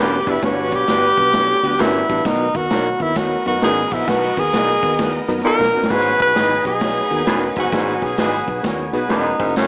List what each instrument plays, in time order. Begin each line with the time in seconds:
Already playing: fingered electric bass E1, baritone saxophone F#2, tonewheel organ G3 B3 B4, clean electric guitar B3 D4 F#4, reed electric piano B3 D4 F#4 G4 B4, violin section B3 B4 D5
0.00 tenor saxophone G4, clean electric guitar B4
0.27 fingered electric bass F#1, baritone saxophone G2, reed electric piano B3 D4 F#4 G4 B4, tenor saxophone E4, kick, closed hi-hat
0.35 closed hi-hat
0.42 fingered electric bass G1, baritone saxophone G2, reed electric piano G2 B3 D4 F#4 G4 B4, horn section C#3 C#4 G4 C#5, tenor saxophone F#4, kick, snare, closed hi-hat
0.72 fingered electric bass B1, reed electric piano B3 D4 F#4 G4 B4, tenor saxophone G4, kick, closed hi-hat
0.88 fingered electric bass G1, clean electric guitar B3 D4 F#4 B4, horn section B3 G4 B4, reed electric piano B3 D4 F#4 G4 B4, snare, closed hi-hat
1.17 fingered electric bass B1, reed electric piano B3 D4 F#4 G4 B4, kick, closed hi-hat
1.33 reed electric piano B3 D4 F#4 G4 B4, horn section C#4 F#4 A4 C#5, kick, snare, closed hi-hat
1.63 fingered electric bass D2, reed electric piano B3 D4 F#4 G4 B4, horn section B3 G4 B4, closed hi-hat
1.73 snare
1.79 fingered electric bass G1, baritone saxophone F#2, reed electric piano B3 D4 F#4 G4 B4, clean electric guitar B3 D4 F#4 B4, tenor saxophone E4, snare, closed hi-hat
2.09 fingered electric bass A1, baritone saxophone G2, reed electric piano B3 D4 F#4 G4 B4, kick, closed hi-hat
2.18 closed hi-hat
2.24 fingered electric bass B1, baritone saxophone B2, reed electric piano B2 B3 D#4 F#4 A#4 B4, tonewheel organ D#3 A#4, tenor saxophone D#4, kick, snare, closed hi-hat
2.55 fingered electric bass D#2, reed electric piano B3 D#4 F#4 A#4 B4, tenor saxophone F#4, kick, closed hi-hat
2.63 closed hi-hat
2.70 fingered electric bass B1, clean electric guitar A#3 D#4 F#4 A#4, reed electric piano B3 D#4 F#4 A#4 C#5, snare, closed hi-hat
3.00 fingered electric bass D#2, reed electric piano B3 D#4 F#4 A#4 B4, tenor saxophone E4, kick, closed hi-hat
3.15 violin section B3 A#4 D#5, reed electric piano B3 D#4 F#4 A#4 C#5, tenor saxophone F#4, kick, snare, closed hi-hat
3.45 fingered electric bass F#2, reed electric piano B3 D#4 F#4 A#4 B4, tenor saxophone F#4, closed hi-hat
3.55 snare
3.61 fingered electric bass G#1, baritone saxophone F#2, clean electric guitar A#3 D#4 F#4 A#4, reed electric piano B3 D#4 F#4 A#4 B4, tenor saxophone G#4, snare, closed hi-hat
3.91 fingered electric bass A#1, baritone saxophone G#2, reed electric piano B3 D#4 F#4 A#4 B4, tenor saxophone E4, kick, closed hi-hat
4.00 closed hi-hat
4.07 fingered electric bass B1, baritone saxophone B2, reed electric piano B2 B3 D#4 F#4 A#4 B4, tenor saxophone F#4, kick, snare, closed hi-hat
4.37 fingered electric bass D#2, reed electric piano B3 D#4 F#4 A#4 B4, tenor saxophone G#4, kick, closed hi-hat
4.46 closed hi-hat
4.53 fingered electric bass B1, clean electric guitar A#3 D#4 F#4 A#4, reed electric piano B3 D#4 F#4 A#4 B4, snare, closed hi-hat
4.82 fingered electric bass D#2, reed electric piano B3 D#4 F#4 A#4 B4, kick, closed hi-hat
4.98 reed electric piano B3 D#4 F#4 A#4 B4, kick, snare, closed hi-hat
5.28 fingered electric bass F#2, reed electric piano B3 D#4 F#4 A#4 B4, closed hi-hat
5.38 snare
5.44 baritone saxophone A#2, clean electric guitar A#3 D#4 F#4 A#4, reed electric piano B3 D#4 F#4 A#4 B4, tenor saxophone A#4
5.59 fingered electric bass B1, snare
5.74 fingered electric bass E1, baritone saxophone F#2, reed electric piano B3 D#4 F#4 A#4 B4
5.82 fingered electric bass F#1, snare
5.89 fingered electric bass G#1, baritone saxophone G#2, reed electric piano G#2 B3 D#4 F#4 G#4 B4, tonewheel organ F#3 G#4, horn section C#4 F#4 G#4 C#5, violin section D#4 B4 G#5, tenor saxophone B4, kick, snare, closed hi-hat
6.19 fingered electric bass B1, reed electric piano B3 D#4 F#4 G#4 B4, tenor saxophone B4, kick, closed hi-hat
6.28 closed hi-hat
6.35 fingered electric bass G#1, clean electric guitar G#3 D#4 F#4 B4, reed electric piano B3 D#4 G#4 B4, horn section D#4 G#4 B4 D#5, snare, closed hi-hat
6.65 fingered electric bass B1, reed electric piano B3 D#4 F#4 G#4 B4, tenor saxophone G#4, kick, closed hi-hat
6.81 reed electric piano B3 D#4 F#4 G#4 C#5, kick, snare, closed hi-hat
7.10 fingered electric bass D#2, reed electric piano B3 D#4 F#4 G#4 A#4, closed hi-hat
7.27 fingered electric bass E1, baritone saxophone F#2, clean electric guitar G#3 D#4 F#4 B4, reed electric piano B3 D#4 F#4 G#4 B4, snare, closed hi-hat
7.56 fingered electric bass F#1, baritone saxophone G#2, reed electric piano B3 D#4 F#4 G#4 B4, tenor saxophone F#4, kick, closed hi-hat
7.65 closed hi-hat
7.72 fingered electric bass G#1, baritone saxophone G#2, reed electric piano G#2 B3 D#4 F#4 G#4 B4, horn section C#4 F#4 G#4 C#5, kick, snare, closed hi-hat
8.01 fingered electric bass B1, reed electric piano B3 D#4 F#4 G#4 B4, tenor saxophone G#4, kick, closed hi-hat
8.17 fingered electric bass G#1, clean electric guitar G#3 D#4 F#4 B4, reed electric piano B3 D#4 F#4 G#4 B4, horn section B3 F#4 G#4 B4, tenor saxophone G#4, snare, closed hi-hat
8.47 fingered electric bass B1, reed electric piano B3 D#4 F#4 G#4 B4, kick, closed hi-hat
8.63 fingered electric bass D#2, reed electric piano B3 D#4 F#4 G#4 B4, horn section C#4 F#4 A#4 C#5, kick, snare, closed hi-hat
8.93 fingered electric bass B1, reed electric piano B3 D#4 F#4 G#4 B4, horn section B3 F#4 G#4 B4, closed hi-hat
9.09 fingered electric bass E1, baritone saxophone F#2, clean electric guitar G#3 D#4 F#4 B4, reed electric piano B3 D#4 F#4 G#4 B4, tenor saxophone D#4, snare, closed hi-hat
9.38 fingered electric bass F#1, baritone saxophone G#2, tonewheel organ E3 A#3 F#4, reed electric piano A#3 C#4 E4 F#4 A#4, kick, closed hi-hat
9.48 closed hi-hat
9.56 baritone saxophone F#2, tenor saxophone C#4, snare, closed hi-hat